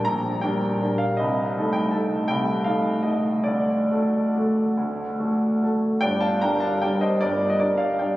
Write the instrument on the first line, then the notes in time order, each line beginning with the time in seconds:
grand piano
0.05 A#1 A#5
0.41 G3 D4 A#4 G5
0.81 G3 D4 A#4
0.98 F5
1.17 C2 D#5
1.57 A3 D#4 A4
1.73 G5
1.91 A3 D#4 A4 A5
2.28 C2 G5
2.64 A3 D#4 A4 F5
3.03 A3 D#4 A4 D#5
3.44 D2 D5
3.91 A3 F#4 A4
4.36 A3 F#4 A4
4.77 D2
5.20 A3 F#4 A4
5.63 A3 F#4 A4
6.01 G1 G2 D5 G5
6.21 F5 A5
6.41 G3 D4 A#4 G5 A#5
6.60 F5 A5
6.82 G3 D4 A#4 D5 G5
7.01 C5 D#5
7.21 G1 G2 A#4 D5
7.50 D#5
7.60 G3 D4 A#4 D5
7.78 D5 F5
7.99 G3 D4 A#4 D5 G5